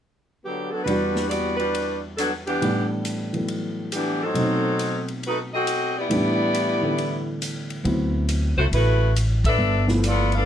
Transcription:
0.44 saxophone section D3 F#3 B3 G4
0.70 saxophone section F#3 B3 D4 A4
0.84 grand piano E2 E3, saxophone section G3 D4 F#4 B4, ride
0.88 grand piano G3 D4 F#4
1.16 snare
1.29 saxophone section B3 F#4 G4 D5, hi-hat pedal, ride
1.57 saxophone section G3 D4 F#4 B4, ride
1.75 ride
2.17 saxophone section F#3 B3 D4 A4, hi-hat pedal, ride
2.46 saxophone section E3 B3 D4 G4, ride
2.62 grand piano A2 E3 G3 B3 D4, ride
3.05 hi-hat pedal, ride
3.33 grand piano E3 F#3 A3 B3, ride
3.48 ride
3.92 saxophone section E3 B3 D4 G4, hi-hat pedal, ride
4.22 saxophone section F#3 C4 D#4 A4
4.34 grand piano B2 F#3 A3 C4, ride
4.39 grand piano D#4
4.79 hi-hat pedal, ride
5.08 ride
5.23 saxophone section A3 D#4 F#4 B4, ride
5.53 saxophone section C4 F#4 A4 D#5
5.67 hi-hat pedal, ride
5.98 saxophone section B3 E4 G4 D5
6.08 grand piano A2 E3 G3 B3, ride
6.14 grand piano D4
6.55 hi-hat pedal, ride
6.81 grand piano D3 E3 A3 B3
6.98 ride
7.42 hi-hat pedal, ride
7.70 ride
7.84 upright bass D2, grand piano F#3 B3 C4 E4, ride
8.29 hi-hat pedal, ride
8.57 upright bass C2, saxophone section A3 E4 F#4 C5
8.71 upright bass A1, saxophone section A3 E4 F#4 B4, ride
9.16 hi-hat pedal, ride
9.44 saxophone section D4 A4 B4 E5, kick, ride
9.58 upright bass G1
9.87 grand piano F3 A3 B3 E4, snare
10.04 saxophone section B3 F4 A4 D5, hi-hat pedal, ride
10.32 saxophone section D4 A4 B4 F5, ride

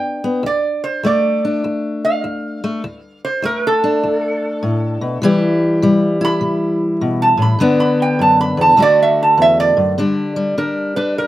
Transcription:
Already playing: steel-string acoustic guitar G2 B3 D4, resonator guitar played with a steel bar G5
0.24 steel-string acoustic guitar B3
0.43 steel-string acoustic guitar D2, resonator guitar played with a steel bar D5
0.84 resonator guitar played with a steel bar C5
1.03 steel-string acoustic guitar D2 A3, resonator guitar played with a steel bar D5
1.45 steel-string acoustic guitar D4
1.64 steel-string acoustic guitar D2
2.05 resonator guitar played with a steel bar F5
2.24 steel-string acoustic guitar D2
2.64 steel-string acoustic guitar A3
2.84 steel-string acoustic guitar D2
3.25 resonator guitar played with a steel bar C5
3.42 steel-string acoustic guitar D2 A3, resonator guitar played with a steel bar A#4
3.67 resonator guitar played with a steel bar A4
3.84 steel-string acoustic guitar D4
4.03 steel-string acoustic guitar D2
4.63 steel-string acoustic guitar A2
5.01 steel-string acoustic guitar B2
5.22 steel-string acoustic guitar C3 E3 G3 E4 G4
5.82 steel-string acoustic guitar C3 G3
6.21 steel-string acoustic guitar E4, resonator guitar played with a steel bar B5
6.41 steel-string acoustic guitar C3
7.01 steel-string acoustic guitar B2
7.22 resonator guitar played with a steel bar A5
7.37 steel-string acoustic guitar A2
7.42 resonator guitar played with a steel bar B5
7.59 steel-string acoustic guitar G2 D3 B3 D4
7.80 resonator guitar played with a steel bar B5
8.02 resonator guitar played with a steel bar G5
8.19 steel-string acoustic guitar F#2, resonator guitar played with a steel bar A5
8.41 resonator guitar played with a steel bar B5
8.57 steel-string acoustic guitar E2, resonator guitar played with a steel bar A5
8.76 steel-string acoustic guitar D2 D3 A3 D4 F#4
8.82 resonator guitar played with a steel bar D5
9.03 resonator guitar played with a steel bar E5
9.23 resonator guitar played with a steel bar A5
9.38 steel-string acoustic guitar E2
9.42 resonator guitar played with a steel bar E5
9.60 resonator guitar played with a steel bar D5
9.77 steel-string acoustic guitar F#2
9.98 steel-string acoustic guitar G2 D3 G3 D4
10.36 steel-string acoustic guitar G3
10.58 steel-string acoustic guitar D3 D4, resonator guitar played with a steel bar A#4
10.96 steel-string acoustic guitar D4, resonator guitar played with a steel bar B4
11.18 steel-string acoustic guitar D2, resonator guitar played with a steel bar A#4

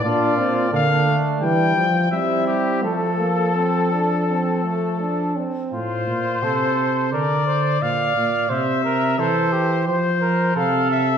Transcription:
0.04 bass trombone A#2, trombone D4, flugelhorn F4, trumpet D5
0.37 trombone C4
0.71 bass trombone D3, trombone A#3, flugelhorn D4, trumpet F5
1.06 trombone A3
1.41 bass trombone E3, trombone G3, trumpet G5
1.76 bass trombone F3
2.11 bass trombone G3, trombone C4, flugelhorn E4, trumpet E5
2.47 trumpet G4
2.83 bass trombone F3, trombone A3, trumpet A4, flugelhorn A4
3.19 trombone A#3
3.55 trombone C4
3.92 trombone D4
4.28 trombone C4
4.64 trombone A3
5.00 trombone D4
5.36 trombone C4
5.71 bass trombone A2, flugelhorn F4, trumpet C5
6.08 bass trombone A#2
6.43 bass trombone C3, flugelhorn A4
7.12 bass trombone D3, flugelhorn A#4, trumpet D5
7.46 flugelhorn C5
7.81 bass trombone A#2, flugelhorn D5, trumpet F5
8.16 bass trombone A#2
8.49 bass trombone C3, flugelhorn C5, trumpet E5
8.84 flugelhorn A#4
9.18 bass trombone E3, flugelhorn A4, trumpet C5
9.52 flugelhorn G4
9.87 bass trombone F3, flugelhorn C5, trumpet C5
10.21 flugelhorn A#4
10.56 bass trombone C3, flugelhorn A4, trumpet F5
10.91 trumpet E5

